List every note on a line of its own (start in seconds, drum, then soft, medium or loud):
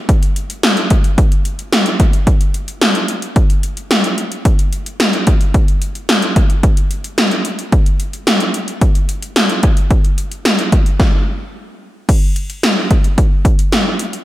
0.09 kick medium
0.09 closed hi-hat medium
0.23 closed hi-hat medium
0.36 closed hi-hat medium
0.50 closed hi-hat medium
0.63 snare loud
0.63 closed hi-hat medium
0.77 closed hi-hat soft
0.90 kick medium
0.90 closed hi-hat medium
1.04 closed hi-hat soft
1.18 kick loud
1.18 closed hi-hat medium
1.32 closed hi-hat soft
1.45 closed hi-hat medium
1.59 closed hi-hat soft
1.73 snare loud
1.73 closed hi-hat medium
1.86 closed hi-hat medium
2.00 kick medium
2.00 closed hi-hat medium
2.13 closed hi-hat soft
2.27 kick medium
2.27 closed hi-hat medium
2.41 closed hi-hat medium
2.54 closed hi-hat medium
2.68 closed hi-hat medium
2.81 snare loud
2.81 closed hi-hat medium
2.95 closed hi-hat soft
3.08 closed hi-hat medium
3.22 closed hi-hat soft
3.36 kick loud
3.36 closed hi-hat medium
3.50 closed hi-hat medium
3.63 closed hi-hat medium
3.77 closed hi-hat soft
3.91 snare loud
3.91 closed hi-hat medium
4.04 closed hi-hat medium
4.18 closed hi-hat medium
4.32 closed hi-hat soft
4.45 kick medium
4.45 closed hi-hat medium
4.59 closed hi-hat medium
4.73 closed hi-hat medium
4.86 closed hi-hat medium
5.00 snare loud
5.00 closed hi-hat medium
5.13 closed hi-hat soft
5.27 kick medium
5.27 closed hi-hat medium
5.41 closed hi-hat soft
5.54 kick loud
5.54 closed hi-hat medium
5.68 closed hi-hat soft
5.82 closed hi-hat medium
5.95 closed hi-hat soft
6.09 snare loud
6.09 closed hi-hat medium
6.22 closed hi-hat medium
6.36 kick medium
6.36 closed hi-hat medium
6.50 closed hi-hat medium
6.63 kick medium
6.63 closed hi-hat medium
6.77 closed hi-hat medium
6.91 closed hi-hat medium
7.04 closed hi-hat medium
7.18 snare loud
7.18 closed hi-hat medium
7.31 closed hi-hat soft
7.45 closed hi-hat medium
7.59 closed hi-hat soft
7.72 kick loud
7.72 closed hi-hat medium
7.86 closed hi-hat soft
8.00 closed hi-hat medium
8.13 closed hi-hat soft
8.27 snare loud
8.27 closed hi-hat medium
8.40 closed hi-hat medium
8.54 closed hi-hat medium
8.68 closed hi-hat soft
8.81 kick medium
8.81 closed hi-hat medium
8.95 closed hi-hat medium
9.09 closed hi-hat medium
9.22 closed hi-hat medium
9.36 snare loud
9.36 closed hi-hat medium
9.49 closed hi-hat soft
9.63 kick medium
9.63 closed hi-hat medium
9.77 closed hi-hat soft
9.91 kick loud
9.91 closed hi-hat medium
10.05 closed hi-hat soft
10.18 closed hi-hat medium
10.32 closed hi-hat soft
10.45 snare loud
10.45 closed hi-hat medium
10.59 closed hi-hat medium
10.72 kick medium
10.72 closed hi-hat medium
10.86 closed hi-hat soft
11.00 kick loud
11.00 snare medium
12.09 kick loud
12.09 closed hi-hat medium
12.09 crash medium
12.36 closed hi-hat medium
12.50 closed hi-hat soft
12.63 snare loud
12.63 closed hi-hat medium
12.91 kick medium
12.91 closed hi-hat medium
13.04 closed hi-hat medium
13.18 kick medium
13.18 closed hi-hat medium
13.45 kick medium
13.45 closed hi-hat medium
13.59 closed hi-hat medium
13.72 snare loud
13.72 closed hi-hat medium
13.99 closed hi-hat medium
14.13 closed hi-hat soft